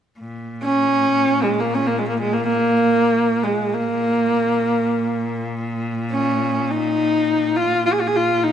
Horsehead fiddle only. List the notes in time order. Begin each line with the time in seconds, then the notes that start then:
0.63 C#4
1.43 G#3
1.59 A#3
1.74 C#4
1.87 A#3
1.98 G#3
2.08 A#3
2.20 G#3
2.33 A#3
2.46 A#3
3.43 G#3
3.73 A#3
6.11 C#4
6.70 D#4
7.56 F4
7.86 F4
7.92 G#4
8.01 F4
8.07 G#4
8.16 F4
8.43 D#4